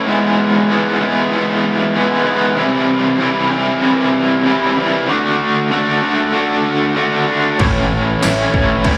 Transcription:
0.06 overdriven electric guitar G#2 E3 G#3 B3 E4
0.68 overdriven electric guitar G#2 E3 G#3 B3 E4
1.00 overdriven electric guitar G#2 E3 G#3 B3 E4
1.31 overdriven electric guitar G#2 E3 G#3 B3 E4
1.94 overdriven electric guitar G#2 E3 G#3 B3 E4
2.24 overdriven electric guitar G#2 E3 G#3 B3 E4
2.56 overdriven electric guitar C3 E3 G3 C4 E4
3.18 overdriven electric guitar C3 E3 G3 C4 E4
3.50 overdriven electric guitar C3 E3 G3 C4 E4
3.81 overdriven electric guitar C3 E3 G3 C4 E4
4.45 overdriven electric guitar C3 E3 G3 C4 E4
4.76 overdriven electric guitar C3 E3 G3 C4 E4
5.08 overdriven electric guitar D3 A3 D4 F#4
5.71 overdriven electric guitar D3 A3 D4 F#4
6.02 overdriven electric guitar D3 A3 D4 F#4
6.33 overdriven electric guitar D3 A3 D4 F#4
6.95 overdriven electric guitar D3 A3 D4 F#4
7.27 overdriven electric guitar D3 A3 D4 F#4
7.58 picked electric bass A1, overdriven electric guitar A2 E3 A3 C#4 E4, kick, crash
7.92 picked electric bass A1
8.22 picked electric bass A1, overdriven electric guitar A2 E3 A3 C#4 E4, snare, tambourine, crash
8.53 picked electric bass A1, overdriven electric guitar A2 E3 A3 C#4 E4, kick
8.84 picked electric bass A1, overdriven electric guitar A2 E3 A3 C#4 E4, kick, crash

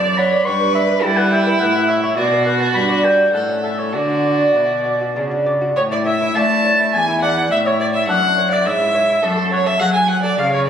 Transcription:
Already playing: lute F#2, cello F#2, violin D5, oboe A5
0.04 lute D5
0.18 violin C#5, lute F#5, oboe B5
0.32 lute D5
0.46 lute G2, cello G2, violin B4, oboe C#6
0.60 lute B4
0.74 lute E5, oboe B5
0.89 lute B4
1.02 cello G3, lute G3 A4, violin E4, oboe A5
1.17 lute B4, oboe F#5
1.31 lute E5, oboe G5
1.47 lute B4
1.60 cello A2, lute A2, oboe F#5
1.76 lute E4
1.88 lute C#5, oboe E5
2.03 lute E4, oboe C#5
2.17 cello B2, lute B2, violin F#4, oboe D5
2.32 lute B3
2.45 lute B4, oboe F#5
2.60 lute B3, oboe A5
2.74 cello G2, lute G2, oboe B5
2.89 lute D4
3.04 lute B4, oboe G5
3.19 lute D4
3.33 cello A2, lute A2, violin A4, oboe F#5
3.49 lute C#4
3.63 lute A4, oboe E5
3.78 lute C#4, oboe C#5
3.93 lute D3, cello D3, violin F#4, oboe D5
4.10 lute F#4
4.25 lute D5
4.40 lute F#4
4.55 cello B2, lute B2 E4
4.71 lute F#4
4.86 lute D5
5.01 lute F#4
5.16 lute C#3 D4, cello C#3
5.31 lute F#4
5.46 lute D5
5.61 lute F#4
5.76 lute A2, cello A2, violin C#5, oboe C#5
5.91 lute E4, oboe D5, violin D5
6.06 lute C#5, violin E5, oboe E5
6.21 lute E4
6.35 cello A3, lute A3 D4, oboe A5, violin A5
6.50 lute E4
6.65 lute C#5
6.79 lute E4
6.94 cello E2, lute E2, violin G#5, oboe G#5
7.08 lute E4
7.22 lute D5, violin F#5, oboe F#5
7.37 lute E4
7.51 lute A2, cello A2, oboe E5, violin E5
7.65 lute E4, violin C#5, oboe C#5
7.80 lute C#5, violin D5, oboe D5
7.93 lute E4, violin E5, oboe E5
8.08 lute F#2 D4, cello F#2, violin F#5, oboe F#5
8.23 lute E4
8.38 lute C#5
8.51 lute E4, violin D5, oboe D5
8.66 lute G#2 C#4, cello G#2, violin E5, oboe E5
8.80 lute E4
8.94 lute C#5
9.09 lute E4
9.23 lute F#2, cello F#2, violin A4, oboe A4
9.37 lute A4
9.52 violin C#5, oboe C#5, lute F#5
9.66 lute A4, violin E5, oboe E5
9.80 lute F#3 G#4, cello F#3, violin F#5, oboe F#5
9.93 lute A4, violin G#5, oboe G#5
10.08 violin F#5, oboe F#5, lute F#5
10.22 lute A4, violin D5, oboe D5
10.38 lute C#3, cello C#3, violin F5, oboe F5
10.52 lute G#4, violin C#5, oboe C#5

